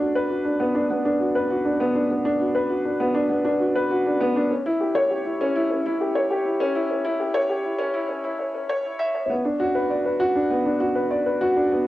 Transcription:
Already playing: D4
0.00 F#4
0.15 B4
0.30 F#4
0.45 D4
0.60 B3
0.75 D4
0.90 B3
1.05 D4
1.20 F#4
1.35 B4
1.50 F#4
1.65 D4
1.80 B3
1.95 D4
2.10 B3
2.25 D4
2.40 F#4
2.55 B4
2.69 F#4
2.85 D4
3.00 B3
3.15 D4
3.29 B3
3.45 D4
3.60 F#4
3.76 B4
3.91 F#4
4.07 D4
4.21 B3
4.36 D4
4.51 C#4
4.66 E4
4.81 G4
4.95 C#5
5.11 G4
5.25 E4
5.41 C#4
5.56 E4
5.71 C#4
5.86 E4
6.01 G4
6.15 C#5
6.31 G4
6.45 E4
6.60 C#4
6.75 E4
6.91 C#4
7.05 E4
7.20 G4
7.34 C#5
7.49 G4
7.64 E4
7.79 C#4
7.94 E4
8.09 C#4
8.24 E4
8.39 C#5
8.54 C#4
8.69 C#5
8.85 E4
8.99 E5
9.14 C#5
9.30 B3
9.45 D4
9.60 F#4
9.75 B4
9.90 D5
10.05 B4
10.20 F#4
10.36 D4
10.50 B3
10.66 D4
10.80 F#4
10.95 B4
11.11 D5
11.26 B4
11.41 F#4
11.56 D4
11.71 B3

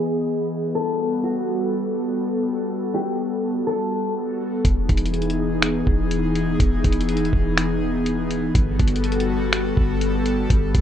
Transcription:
Already playing: E3 B3 G#4 D#5
0.74 G3 F#4 A4
1.24 F#4
2.95 G4
3.67 A4
4.65 E1 E3 B3 D#4 G#4, kick, closed hi-hat
4.89 E1, kick, closed hi-hat
4.97 closed hi-hat
5.06 closed hi-hat
5.14 closed hi-hat
5.22 closed hi-hat
5.30 closed hi-hat
5.62 finger snap, closed hi-hat
5.87 E1, kick
6.11 closed hi-hat
6.35 closed hi-hat
6.60 E1, kick, closed hi-hat
6.84 E1, kick, closed hi-hat
6.92 closed hi-hat
7.01 closed hi-hat
7.09 closed hi-hat
7.17 closed hi-hat
7.25 closed hi-hat
7.33 E1, kick
7.58 finger snap, closed hi-hat
8.06 closed hi-hat
8.31 closed hi-hat
8.55 G1 G3 F#4 A4, kick, closed hi-hat
8.79 G1, kick, closed hi-hat
8.88 closed hi-hat
8.96 closed hi-hat
9.04 closed hi-hat
9.12 closed hi-hat
9.20 closed hi-hat
9.53 finger snap, closed hi-hat
9.77 G1, kick
10.01 closed hi-hat
10.26 closed hi-hat
10.50 G1 G4, kick, closed hi-hat
10.75 G1, kick, closed hi-hat

